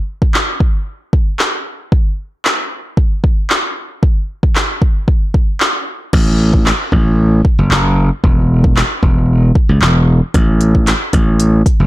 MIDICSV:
0, 0, Header, 1, 3, 480
1, 0, Start_track
1, 0, Tempo, 526316
1, 1753, Time_signature, 4, 2, 24, 8
1, 10825, End_track
2, 0, Start_track
2, 0, Title_t, "Slap bass"
2, 0, Program_c, 0, 36
2, 5592, Note_on_c, 0, 33, 94
2, 6111, Note_off_c, 0, 33, 0
2, 6312, Note_on_c, 0, 33, 84
2, 6750, Note_off_c, 0, 33, 0
2, 6918, Note_on_c, 0, 30, 95
2, 7000, Note_off_c, 0, 30, 0
2, 7031, Note_on_c, 0, 30, 89
2, 7378, Note_off_c, 0, 30, 0
2, 7513, Note_on_c, 0, 28, 98
2, 8032, Note_off_c, 0, 28, 0
2, 8233, Note_on_c, 0, 28, 89
2, 8670, Note_off_c, 0, 28, 0
2, 8838, Note_on_c, 0, 37, 94
2, 8920, Note_off_c, 0, 37, 0
2, 8952, Note_on_c, 0, 28, 96
2, 9298, Note_off_c, 0, 28, 0
2, 9433, Note_on_c, 0, 33, 96
2, 9952, Note_off_c, 0, 33, 0
2, 10153, Note_on_c, 0, 33, 89
2, 10591, Note_off_c, 0, 33, 0
2, 10759, Note_on_c, 0, 30, 93
2, 10825, Note_off_c, 0, 30, 0
2, 10825, End_track
3, 0, Start_track
3, 0, Title_t, "Drums"
3, 199, Note_on_c, 9, 36, 85
3, 290, Note_off_c, 9, 36, 0
3, 312, Note_on_c, 9, 39, 113
3, 322, Note_on_c, 9, 38, 85
3, 403, Note_off_c, 9, 39, 0
3, 413, Note_off_c, 9, 38, 0
3, 550, Note_on_c, 9, 36, 85
3, 642, Note_off_c, 9, 36, 0
3, 1031, Note_on_c, 9, 36, 93
3, 1122, Note_off_c, 9, 36, 0
3, 1269, Note_on_c, 9, 39, 112
3, 1280, Note_on_c, 9, 38, 91
3, 1360, Note_off_c, 9, 39, 0
3, 1371, Note_off_c, 9, 38, 0
3, 1751, Note_on_c, 9, 36, 116
3, 1843, Note_off_c, 9, 36, 0
3, 2234, Note_on_c, 9, 39, 114
3, 2244, Note_on_c, 9, 38, 91
3, 2325, Note_off_c, 9, 39, 0
3, 2335, Note_off_c, 9, 38, 0
3, 2711, Note_on_c, 9, 36, 94
3, 2802, Note_off_c, 9, 36, 0
3, 2953, Note_on_c, 9, 36, 95
3, 3044, Note_off_c, 9, 36, 0
3, 3190, Note_on_c, 9, 39, 113
3, 3201, Note_on_c, 9, 38, 91
3, 3281, Note_off_c, 9, 39, 0
3, 3292, Note_off_c, 9, 38, 0
3, 3673, Note_on_c, 9, 36, 120
3, 3764, Note_off_c, 9, 36, 0
3, 4041, Note_on_c, 9, 36, 87
3, 4132, Note_off_c, 9, 36, 0
3, 4154, Note_on_c, 9, 39, 109
3, 4164, Note_on_c, 9, 38, 94
3, 4245, Note_off_c, 9, 39, 0
3, 4255, Note_off_c, 9, 38, 0
3, 4393, Note_on_c, 9, 36, 92
3, 4484, Note_off_c, 9, 36, 0
3, 4631, Note_on_c, 9, 36, 97
3, 4722, Note_off_c, 9, 36, 0
3, 4873, Note_on_c, 9, 36, 92
3, 4964, Note_off_c, 9, 36, 0
3, 5109, Note_on_c, 9, 39, 113
3, 5120, Note_on_c, 9, 38, 94
3, 5201, Note_off_c, 9, 39, 0
3, 5211, Note_off_c, 9, 38, 0
3, 5592, Note_on_c, 9, 36, 118
3, 5592, Note_on_c, 9, 49, 92
3, 5683, Note_off_c, 9, 36, 0
3, 5683, Note_off_c, 9, 49, 0
3, 5960, Note_on_c, 9, 36, 86
3, 6052, Note_off_c, 9, 36, 0
3, 6073, Note_on_c, 9, 39, 117
3, 6083, Note_on_c, 9, 38, 89
3, 6164, Note_off_c, 9, 39, 0
3, 6175, Note_off_c, 9, 38, 0
3, 6312, Note_on_c, 9, 36, 86
3, 6404, Note_off_c, 9, 36, 0
3, 6792, Note_on_c, 9, 36, 93
3, 6883, Note_off_c, 9, 36, 0
3, 7031, Note_on_c, 9, 39, 118
3, 7041, Note_on_c, 9, 38, 92
3, 7122, Note_off_c, 9, 39, 0
3, 7132, Note_off_c, 9, 38, 0
3, 7513, Note_on_c, 9, 36, 113
3, 7604, Note_off_c, 9, 36, 0
3, 7880, Note_on_c, 9, 36, 90
3, 7971, Note_off_c, 9, 36, 0
3, 7994, Note_on_c, 9, 39, 113
3, 8004, Note_on_c, 9, 38, 93
3, 8085, Note_off_c, 9, 39, 0
3, 8095, Note_off_c, 9, 38, 0
3, 8233, Note_on_c, 9, 36, 90
3, 8324, Note_off_c, 9, 36, 0
3, 8713, Note_on_c, 9, 36, 97
3, 8804, Note_off_c, 9, 36, 0
3, 8952, Note_on_c, 9, 39, 115
3, 8962, Note_on_c, 9, 38, 91
3, 9043, Note_off_c, 9, 39, 0
3, 9053, Note_off_c, 9, 38, 0
3, 9433, Note_on_c, 9, 36, 116
3, 9433, Note_on_c, 9, 42, 98
3, 9524, Note_off_c, 9, 36, 0
3, 9524, Note_off_c, 9, 42, 0
3, 9673, Note_on_c, 9, 42, 66
3, 9764, Note_off_c, 9, 42, 0
3, 9801, Note_on_c, 9, 36, 84
3, 9893, Note_off_c, 9, 36, 0
3, 9915, Note_on_c, 9, 39, 113
3, 9915, Note_on_c, 9, 42, 101
3, 9926, Note_on_c, 9, 38, 94
3, 10006, Note_off_c, 9, 39, 0
3, 10006, Note_off_c, 9, 42, 0
3, 10017, Note_off_c, 9, 38, 0
3, 10152, Note_on_c, 9, 42, 77
3, 10153, Note_on_c, 9, 36, 92
3, 10243, Note_off_c, 9, 42, 0
3, 10244, Note_off_c, 9, 36, 0
3, 10393, Note_on_c, 9, 42, 81
3, 10484, Note_off_c, 9, 42, 0
3, 10633, Note_on_c, 9, 36, 96
3, 10634, Note_on_c, 9, 42, 74
3, 10724, Note_off_c, 9, 36, 0
3, 10726, Note_off_c, 9, 42, 0
3, 10825, End_track
0, 0, End_of_file